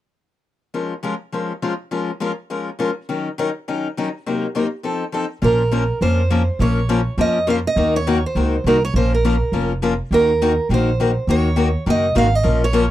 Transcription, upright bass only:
0, 0, Header, 1, 2, 480
1, 0, Start_track
1, 0, Key_signature, -5, "minor"
1, 0, Tempo, 292826
1, 1205, Time_signature, 4, 2, 24, 8
1, 21159, End_track
2, 0, Start_track
2, 0, Title_t, "Upright bass"
2, 0, Program_c, 0, 32
2, 8887, Note_on_c, 0, 34, 82
2, 9661, Note_off_c, 0, 34, 0
2, 9848, Note_on_c, 0, 41, 75
2, 10622, Note_off_c, 0, 41, 0
2, 10805, Note_on_c, 0, 34, 78
2, 11579, Note_off_c, 0, 34, 0
2, 11761, Note_on_c, 0, 41, 72
2, 12536, Note_off_c, 0, 41, 0
2, 12721, Note_on_c, 0, 39, 86
2, 13495, Note_off_c, 0, 39, 0
2, 13688, Note_on_c, 0, 37, 73
2, 14100, Note_off_c, 0, 37, 0
2, 14164, Note_on_c, 0, 36, 71
2, 14577, Note_off_c, 0, 36, 0
2, 14650, Note_on_c, 0, 34, 84
2, 15419, Note_off_c, 0, 34, 0
2, 15604, Note_on_c, 0, 29, 68
2, 16375, Note_off_c, 0, 29, 0
2, 16567, Note_on_c, 0, 39, 77
2, 17336, Note_off_c, 0, 39, 0
2, 17527, Note_on_c, 0, 34, 74
2, 18296, Note_off_c, 0, 34, 0
2, 18479, Note_on_c, 0, 39, 75
2, 19250, Note_off_c, 0, 39, 0
2, 19449, Note_on_c, 0, 30, 76
2, 19856, Note_off_c, 0, 30, 0
2, 19928, Note_on_c, 0, 32, 69
2, 20335, Note_off_c, 0, 32, 0
2, 20398, Note_on_c, 0, 34, 85
2, 21159, Note_off_c, 0, 34, 0
2, 21159, End_track
0, 0, End_of_file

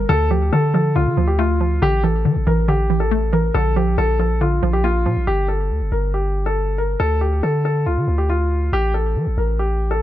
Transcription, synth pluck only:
0, 0, Header, 1, 2, 480
1, 0, Start_track
1, 0, Key_signature, -1, "minor"
1, 0, Tempo, 431655
1, 105, Time_signature, 4, 2, 24, 8
1, 11144, End_track
2, 0, Start_track
2, 0, Title_t, "Synth pluck"
2, 0, Program_c, 0, 84
2, 103, Note_on_c, 0, 50, 99
2, 342, Note_on_c, 0, 53, 80
2, 572, Note_off_c, 0, 50, 0
2, 585, Note_on_c, 0, 50, 89
2, 810, Note_off_c, 0, 53, 0
2, 823, Note_on_c, 0, 53, 88
2, 1050, Note_off_c, 0, 50, 0
2, 1063, Note_on_c, 0, 50, 88
2, 1291, Note_off_c, 0, 53, 0
2, 1305, Note_on_c, 0, 53, 77
2, 1542, Note_on_c, 0, 57, 96
2, 1771, Note_off_c, 0, 53, 0
2, 1784, Note_on_c, 0, 53, 77
2, 2011, Note_off_c, 0, 50, 0
2, 2023, Note_off_c, 0, 57, 0
2, 2024, Note_off_c, 0, 53, 0
2, 2024, Note_on_c, 0, 50, 102
2, 2264, Note_on_c, 0, 52, 84
2, 2490, Note_off_c, 0, 50, 0
2, 2503, Note_on_c, 0, 50, 88
2, 2730, Note_off_c, 0, 52, 0
2, 2744, Note_on_c, 0, 52, 85
2, 2969, Note_off_c, 0, 50, 0
2, 2983, Note_on_c, 0, 50, 94
2, 3211, Note_off_c, 0, 52, 0
2, 3224, Note_on_c, 0, 52, 81
2, 3463, Note_on_c, 0, 57, 87
2, 3690, Note_off_c, 0, 52, 0
2, 3704, Note_on_c, 0, 52, 85
2, 3930, Note_off_c, 0, 50, 0
2, 3943, Note_off_c, 0, 57, 0
2, 3944, Note_off_c, 0, 52, 0
2, 3944, Note_on_c, 0, 50, 105
2, 4184, Note_on_c, 0, 53, 85
2, 4411, Note_off_c, 0, 50, 0
2, 4424, Note_on_c, 0, 50, 83
2, 4651, Note_off_c, 0, 53, 0
2, 4664, Note_on_c, 0, 53, 85
2, 4890, Note_off_c, 0, 50, 0
2, 4903, Note_on_c, 0, 50, 92
2, 5132, Note_off_c, 0, 53, 0
2, 5145, Note_on_c, 0, 53, 86
2, 5383, Note_on_c, 0, 58, 83
2, 5611, Note_off_c, 0, 53, 0
2, 5624, Note_on_c, 0, 53, 80
2, 5863, Note_off_c, 0, 50, 0
2, 5864, Note_off_c, 0, 53, 0
2, 5864, Note_off_c, 0, 58, 0
2, 11144, End_track
0, 0, End_of_file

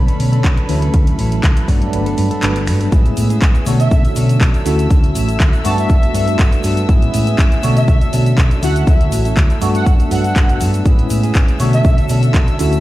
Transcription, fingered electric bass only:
0, 0, Header, 1, 3, 480
1, 0, Start_track
1, 0, Tempo, 495868
1, 908, Time_signature, 4, 2, 24, 8
1, 12391, End_track
2, 0, Start_track
2, 0, Title_t, "Fingered electric bass"
2, 0, Program_c, 0, 33
2, 190, Note_on_c, 0, 47, 84
2, 386, Note_off_c, 0, 47, 0
2, 428, Note_on_c, 0, 35, 103
2, 532, Note_off_c, 0, 35, 0
2, 670, Note_on_c, 0, 38, 97
2, 866, Note_off_c, 0, 38, 0
2, 1153, Note_on_c, 0, 33, 89
2, 1348, Note_off_c, 0, 33, 0
2, 1389, Note_on_c, 0, 38, 88
2, 1492, Note_off_c, 0, 38, 0
2, 1629, Note_on_c, 0, 43, 92
2, 1826, Note_off_c, 0, 43, 0
2, 1871, Note_on_c, 0, 31, 88
2, 2067, Note_off_c, 0, 31, 0
2, 2114, Note_on_c, 0, 43, 78
2, 2214, Note_off_c, 0, 43, 0
2, 2353, Note_on_c, 0, 31, 101
2, 2592, Note_on_c, 0, 43, 89
2, 2607, Note_off_c, 0, 31, 0
2, 2787, Note_off_c, 0, 43, 0
2, 2831, Note_on_c, 0, 33, 95
2, 3027, Note_off_c, 0, 33, 0
2, 3072, Note_on_c, 0, 45, 92
2, 3267, Note_off_c, 0, 45, 0
2, 3309, Note_on_c, 0, 33, 92
2, 3412, Note_off_c, 0, 33, 0
2, 3549, Note_on_c, 0, 47, 95
2, 3746, Note_off_c, 0, 47, 0
2, 3789, Note_on_c, 0, 35, 98
2, 3892, Note_off_c, 0, 35, 0
2, 4032, Note_on_c, 0, 47, 85
2, 4227, Note_off_c, 0, 47, 0
2, 4268, Note_on_c, 0, 35, 101
2, 4372, Note_off_c, 0, 35, 0
2, 4508, Note_on_c, 0, 38, 96
2, 4705, Note_off_c, 0, 38, 0
2, 4748, Note_on_c, 0, 38, 99
2, 4945, Note_off_c, 0, 38, 0
2, 4989, Note_on_c, 0, 33, 91
2, 5186, Note_off_c, 0, 33, 0
2, 5227, Note_on_c, 0, 38, 93
2, 5331, Note_off_c, 0, 38, 0
2, 5469, Note_on_c, 0, 43, 91
2, 5666, Note_off_c, 0, 43, 0
2, 5707, Note_on_c, 0, 31, 96
2, 5811, Note_off_c, 0, 31, 0
2, 5945, Note_on_c, 0, 43, 89
2, 6143, Note_off_c, 0, 43, 0
2, 6188, Note_on_c, 0, 31, 102
2, 6292, Note_off_c, 0, 31, 0
2, 6428, Note_on_c, 0, 43, 95
2, 6625, Note_off_c, 0, 43, 0
2, 6669, Note_on_c, 0, 33, 97
2, 6866, Note_off_c, 0, 33, 0
2, 6911, Note_on_c, 0, 45, 91
2, 7107, Note_off_c, 0, 45, 0
2, 7148, Note_on_c, 0, 33, 93
2, 7252, Note_off_c, 0, 33, 0
2, 7392, Note_on_c, 0, 47, 94
2, 7587, Note_off_c, 0, 47, 0
2, 7627, Note_on_c, 0, 35, 98
2, 7731, Note_off_c, 0, 35, 0
2, 7873, Note_on_c, 0, 47, 88
2, 8068, Note_off_c, 0, 47, 0
2, 8108, Note_on_c, 0, 35, 104
2, 8212, Note_off_c, 0, 35, 0
2, 8349, Note_on_c, 0, 38, 95
2, 8545, Note_off_c, 0, 38, 0
2, 8590, Note_on_c, 0, 38, 95
2, 8786, Note_off_c, 0, 38, 0
2, 8827, Note_on_c, 0, 33, 93
2, 9025, Note_off_c, 0, 33, 0
2, 9068, Note_on_c, 0, 38, 95
2, 9172, Note_off_c, 0, 38, 0
2, 9311, Note_on_c, 0, 43, 92
2, 9507, Note_off_c, 0, 43, 0
2, 9549, Note_on_c, 0, 31, 96
2, 9652, Note_off_c, 0, 31, 0
2, 9789, Note_on_c, 0, 43, 90
2, 9986, Note_off_c, 0, 43, 0
2, 10028, Note_on_c, 0, 31, 86
2, 10271, Note_on_c, 0, 43, 91
2, 10285, Note_off_c, 0, 31, 0
2, 10466, Note_off_c, 0, 43, 0
2, 10508, Note_on_c, 0, 33, 99
2, 10705, Note_off_c, 0, 33, 0
2, 10748, Note_on_c, 0, 45, 90
2, 10945, Note_off_c, 0, 45, 0
2, 10987, Note_on_c, 0, 33, 96
2, 11091, Note_off_c, 0, 33, 0
2, 11227, Note_on_c, 0, 47, 92
2, 11425, Note_off_c, 0, 47, 0
2, 11468, Note_on_c, 0, 35, 96
2, 11572, Note_off_c, 0, 35, 0
2, 11709, Note_on_c, 0, 47, 90
2, 11906, Note_off_c, 0, 47, 0
2, 11948, Note_on_c, 0, 35, 103
2, 12052, Note_off_c, 0, 35, 0
2, 12192, Note_on_c, 0, 38, 96
2, 12387, Note_off_c, 0, 38, 0
2, 12391, End_track
3, 0, Start_track
3, 0, Title_t, "Muted fingered electric bass strokes"
3, 2244, Note_on_c, 9, 29, 43
3, 2341, Note_off_c, 9, 29, 0
3, 12391, End_track
0, 0, End_of_file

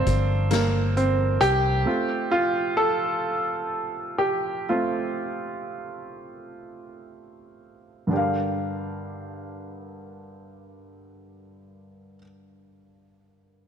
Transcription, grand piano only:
0, 0, Header, 1, 2, 480
1, 0, Start_track
1, 0, Key_signature, -2, "minor"
1, 0, Tempo, 911854
1, 980, Time_signature, 6, 3, 24, 8
1, 1952, Tempo, 983607
1, 2432, Tempo, 1048951
1, 2912, Tempo, 1129944
1, 3392, Tempo, 1237113
1, 3872, Tempo, 1295896
1, 5935, End_track
2, 0, Start_track
2, 0, Title_t, "Grand piano"
2, 0, Program_c, 0, 0
2, 0, Control_c, 0, 64, 127
2, 0, Note_on_c, 0, 57, 49
2, 0, Note_on_c, 0, 58, 41
2, 0, Note_on_c, 0, 60, 93
2, 0, Note_on_c, 0, 62, 78
2, 0, Note_on_c, 0, 65, 53
2, 267, Note_off_c, 0, 58, 0
2, 267, Note_on_c, 0, 58, 66
2, 284, Note_off_c, 0, 60, 0
2, 510, Note_on_c, 0, 60, 67
2, 512, Note_off_c, 0, 58, 0
2, 741, Note_on_c, 0, 67, 104
2, 752, Note_off_c, 0, 60, 0
2, 977, Note_off_c, 0, 57, 0
2, 977, Note_on_c, 0, 57, 42
2, 981, Note_on_c, 0, 60, 44
2, 983, Note_off_c, 0, 65, 0
2, 983, Note_on_c, 0, 65, 49
2, 986, Control_c, 0, 64, 0
2, 989, Note_off_c, 0, 62, 0
2, 1079, Control_c, 0, 64, 127
2, 1197, Note_off_c, 0, 67, 0
2, 1210, Note_off_c, 0, 65, 0
2, 1218, Note_on_c, 0, 65, 85
2, 1273, Note_off_c, 0, 65, 0
2, 1458, Note_on_c, 0, 69, 86
2, 2184, Note_on_c, 0, 67, 72
2, 2209, Note_off_c, 0, 69, 0
2, 2411, Note_off_c, 0, 57, 0
2, 2413, Note_off_c, 0, 60, 0
2, 2413, Note_off_c, 0, 67, 0
2, 2432, Note_on_c, 0, 65, 65
2, 2433, Note_on_c, 0, 57, 40
2, 2435, Note_on_c, 0, 60, 41
2, 3857, Note_off_c, 0, 57, 0
2, 3858, Note_off_c, 0, 60, 0
2, 3858, Note_on_c, 0, 43, 38
2, 3859, Note_off_c, 0, 65, 0
2, 3865, Note_on_c, 0, 50, 37
2, 3872, Note_on_c, 0, 62, 36
2, 3878, Control_c, 0, 64, 0
2, 3880, Note_on_c, 0, 67, 38
2, 3885, Note_on_c, 0, 70, 34
2, 3894, Note_on_c, 0, 77, 45
2, 3948, Control_c, 0, 64, 127
2, 5366, Note_off_c, 0, 43, 0
2, 5373, Note_off_c, 0, 50, 0
2, 5380, Note_off_c, 0, 62, 0
2, 5387, Note_off_c, 0, 67, 0
2, 5393, Note_off_c, 0, 70, 0
2, 5402, Note_off_c, 0, 77, 0
2, 5935, End_track
0, 0, End_of_file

